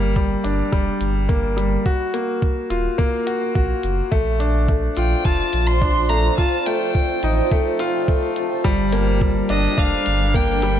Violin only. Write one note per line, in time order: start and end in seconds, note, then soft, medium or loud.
4.97 5.26 G5 medium
5.25 5.69 A5 medium
5.67 6.11 C6 loud
6.09 6.37 A#5 medium
6.38 6.67 A5 medium
6.66 7.51 G5 medium
9.51 9.80 D#5 medium
9.79 10.38 F5 medium
10.36 10.80 G5 medium